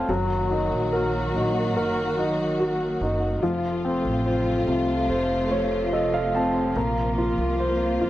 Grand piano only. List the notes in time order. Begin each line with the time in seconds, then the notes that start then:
Already playing: C4 A4 C5 C#5 D#5 F5 A5
0.09 F#3
0.51 D#4
0.93 A#4
1.35 D#4
1.77 A#4
2.18 D#4
2.60 F#4
3.02 D#4
3.43 F3
3.85 C4
4.26 C5
4.67 C3
5.09 C5
5.51 A3 C#5
5.93 A4 D#5
6.14 F5
6.35 C4 A5
6.76 A#3
7.18 F4
7.60 C5
8.01 F4